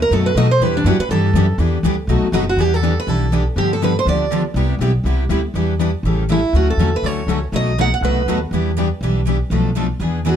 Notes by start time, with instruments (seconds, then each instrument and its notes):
0.02 steel-string acoustic guitar A#4
0.11 upright bass F#2, steel-string acoustic guitar B2 F#3 A3 D#4 F#4 A4 B4
0.26 steel-string acoustic guitar B4
0.35 upright bass B2, steel-string acoustic guitar B2 F#3 A3 D#4 F#4 B4 D#5
0.51 steel-string acoustic guitar C5
0.60 upright bass E2, steel-string acoustic guitar E3 G3 B3 D4 E4 G4 B4
0.77 steel-string acoustic guitar D4
0.84 upright bass F#2, steel-string acoustic guitar E3 G3 B3 D4 E4 F#4 G4 B4
0.99 steel-string acoustic guitar B4, muted upright bass stroke
1.09 upright bass G2, steel-string acoustic guitar E3 G3 B3 D4 E4 G4 A4 B4
1.33 upright bass F#2, steel-string acoustic guitar E3 G3 B3 D4 E4 G4 B4
1.58 upright bass E2, steel-string acoustic guitar E3 G3 B3 D4 E4 G4 B4
1.83 upright bass D2, steel-string acoustic guitar E3 G3 B3 D4 E4 G4 B4
2.07 upright bass B1, steel-string acoustic guitar B2 F#3 A3 D#4 F#4 B4
2.22 muted upright bass stroke
2.32 upright bass F#1, steel-string acoustic guitar B2 F#3 A3 D#4 F#4 B4
2.49 steel-string acoustic guitar F#4
2.57 upright bass E2, steel-string acoustic guitar E3 G3 B3 D4 E4 G4 B4
2.74 steel-string acoustic guitar A4
2.83 steel-string acoustic guitar E3 G3 B3 D4 E4 G4 B4
3.00 steel-string acoustic guitar B4
3.07 upright bass B1, steel-string acoustic guitar E3 G3 B3 D4 E4 G4 A4 B4
3.32 steel-string acoustic guitar E3 G3 B3 D4 E4 G4 B4
3.56 upright bass G2, steel-string acoustic guitar D3 F3 B3 D4 G4
3.73 steel-string acoustic guitar A4
3.82 steel-string acoustic guitar D3 F3 B3 D4 G4 B4
3.99 steel-string acoustic guitar C5
4.05 upright bass D2, steel-string acoustic guitar D3 F3 B3 D4 G4 D5
4.32 steel-string acoustic guitar D3 F3 B3 D4 G4
4.54 upright bass C2, steel-string acoustic guitar C3 G3 B3 E4 G4
4.79 upright bass B1, steel-string acoustic guitar C3 G3 B3 E4 G4
5.04 upright bass C2, steel-string acoustic guitar C3 G3 B3 E4 G4
5.29 upright bass D2, steel-string acoustic guitar C3 G3 B3 E4 G4
5.54 upright bass E2, steel-string acoustic guitar E3 G3 B3 D4 E4 G4 B4
5.79 steel-string acoustic guitar E3 G3 B3 D4 E4 G4 B4
6.03 upright bass A1, steel-string acoustic guitar C#3 E3 G3 A3 C#4 E4 G4 A4
6.29 steel-string acoustic guitar C#3 E3 G3 A3 C#4 E4 G4 A4
6.53 upright bass D2, steel-string acoustic guitar D3 F#3 A3 C#4 F#4 A4
6.70 steel-string acoustic guitar A4
6.77 upright bass E2, steel-string acoustic guitar D3 F#3 A3 C#4 F#4 A4
6.96 steel-string acoustic guitar B4
7.02 upright bass D2, steel-string acoustic guitar D3 F#3 A3 C#4 F#4 A4 C#5
7.27 upright bass C#2, steel-string acoustic guitar D3 F#3 A3 C#4 F#4 A4
7.52 upright bass B1, steel-string acoustic guitar B2 F#3 A3 D#4 F#4 B4 D#5
7.78 steel-string acoustic guitar B2 F#3 A3 D#4 F#4 B4 F#5
7.94 steel-string acoustic guitar F#5
8.01 upright bass C2, steel-string acoustic guitar B2 F#3 A3 D#4 F#4 B4
8.05 steel-string acoustic guitar B4
8.26 upright bass D#2, steel-string acoustic guitar B2 F#3 A3 D#4 F#4 B4
8.51 upright bass E2, steel-string acoustic guitar E3 G3 B3 D4 E4 G4 B4
8.77 steel-string acoustic guitar E3 G3 B3 D4 E4 G4 B4
9.01 upright bass B1, steel-string acoustic guitar E3 G3 B3 D4 E4 G4 B4
9.26 steel-string acoustic guitar E3 G3 B3 D4 E4 G4 B4
9.50 upright bass B1, steel-string acoustic guitar B2 F3 A3 D4 A4 B4
9.75 steel-string acoustic guitar B2 F3 A3 D4 A4 B4
10.00 upright bass E2, steel-string acoustic guitar E3 B3 D4 G#4 B4
10.25 steel-string acoustic guitar E3 B3 D4 G#4 B4
10.29 steel-string acoustic guitar F#4